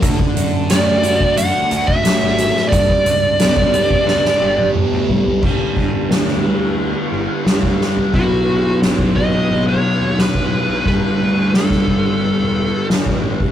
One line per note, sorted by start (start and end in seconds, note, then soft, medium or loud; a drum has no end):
0.02 0.16 D2 loud
0.02 1.71 D3 medium
0.02 kick loud
0.02 closed hi-hat loud
0.19 kick medium
0.36 1.18 F#2 medium
0.36 closed hi-hat medium
0.70 2.03 A3 medium
0.70 1.34 D5 loud
0.70 snare loud
0.70 closed hi-hat loud
1.03 1.69 F#4 medium
1.03 closed hi-hat medium
1.20 kick medium
1.37 1.51 F#2 loud
1.37 4.07 D4 medium
1.37 1.85 F#5 loud
1.37 closed hi-hat loud
1.70 1.99 D2 loud
1.70 2.72 F#4 medium
1.70 closed hi-hat medium
1.87 2.68 E5 loud
1.87 kick medium
2.04 2.72 A3 medium
2.04 snare loud
2.04 closed hi-hat loud
2.22 2.49 G#1 medium
2.38 2.73 F#3 medium
2.38 closed hi-hat medium
2.56 snare soft
2.69 2.86 G1 loud
2.69 4.41 G2 medium
2.69 4.69 D5 medium
2.69 kick loud
2.69 closed hi-hat loud
2.89 kick medium
3.06 3.88 C#2 loud
3.06 closed hi-hat medium
3.39 4.73 B3 medium
3.39 snare loud
3.39 closed hi-hat loud
3.57 kick medium
3.74 4.40 G4 medium
3.74 closed hi-hat medium
3.91 kick medium
4.07 4.21 C#2 medium
4.07 5.43 D4 medium
4.07 snare medium
4.25 snare medium
4.41 4.69 G1 loud
4.41 5.43 G4 medium
4.58 high tom medium
4.74 5.43 B3 medium
4.74 mid tom medium
4.92 5.20 D2 medium
5.09 5.44 G3 medium
5.09 floor tom loud
5.26 floor tom medium
5.42 5.56 G1 medium
5.42 6.42 G2 loud
5.42 6.43 D3 loud
5.42 6.42 G3 loud
5.42 kick loud
5.42 crash loud
5.76 5.90 G2 medium
5.76 kick medium
5.76 ride medium
6.10 6.93 D2 medium
6.10 snare loud
6.10 ride medium
6.28 snare soft
6.44 7.44 G2 medium
6.44 7.45 D3 medium
6.44 7.44 G3 medium
6.44 ride medium
6.78 ride medium
7.12 7.26 G1 medium
7.12 ride medium
7.46 7.74 D2 medium
7.46 8.12 G2 medium
7.46 8.12 D3 medium
7.46 8.13 G3 medium
7.46 snare loud
7.46 ride medium
7.63 kick medium
7.81 snare medium
7.97 floor tom medium
8.13 8.69 B1 loud
8.13 10.83 B2 medium
8.13 10.84 F#3 loud
8.13 11.65 B3 medium
8.13 8.78 F#4 loud
8.13 kick loud
8.13 ride medium
8.48 ride medium
8.81 9.37 G#1 loud
8.81 snare loud
8.81 ride medium
8.99 kick medium
9.15 9.63 D#5 loud
9.15 kick medium
9.15 ride medium
9.49 9.77 G#1 medium
9.49 ride medium
9.69 10.20 C#5 medium
9.84 ride medium
10.01 10.28 D#2 medium
10.18 10.86 B4 medium
10.18 snare loud
10.18 ride medium
10.35 kick medium
10.52 ride medium
10.68 10.82 B1 medium
10.85 11.13 G1 loud
10.85 13.52 G2 medium
10.85 13.52 D3 medium
10.85 13.52 G3 loud
10.85 11.56 B4 medium
10.85 kick loud
10.85 ride medium
11.20 11.75 D2 medium
11.20 ride medium
11.53 12.87 A4 medium
11.53 snare loud
11.53 ride medium
11.70 kick medium
11.70 snare soft
11.88 12.29 G1 medium
11.88 kick medium
11.88 ride medium
12.21 ride medium
12.40 12.67 E1 medium
12.56 ride medium
12.89 snare loud
12.89 ride medium
13.06 13.34 A1 medium
13.06 kick medium
13.23 ride medium
13.40 kick medium